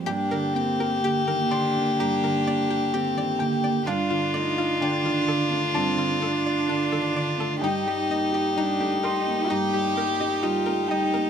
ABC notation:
X:1
M:4/4
L:1/16
Q:1/4=64
K:Gm
V:1 name="Synth pluck"
G B g B G B d z G B d g G d g d | D F d F D F A z D F A d D A d A | E G e G E G B z E G B e E B e B |]
V:2 name="Violin"
G16 | F16 | G16 |]
V:3 name="Cello"
D2 C2 B,2 D2 D4 C2 B,2 | D2 E2 D4 C2 D6 | E4 D2 E2 G4 F2 E2 |]
V:4 name="Viola"
B,16 | D16 | E16 |]
V:5 name="Felt piano"
g6 c'2 b6 g2 | f4 g4 a8 | g6 c'2 b6 g2 |]
V:6 name="Felt piano" clef=bass
G,, D, B, G D, E, D, B, G,, D, B, G D, E, D, B, | G,, D, A, F D, E, D, A, G,, D, A, F D, E, D, A, | G,, G, B, G G, A, G, B, G,, G, B, G G, A, G, B, |]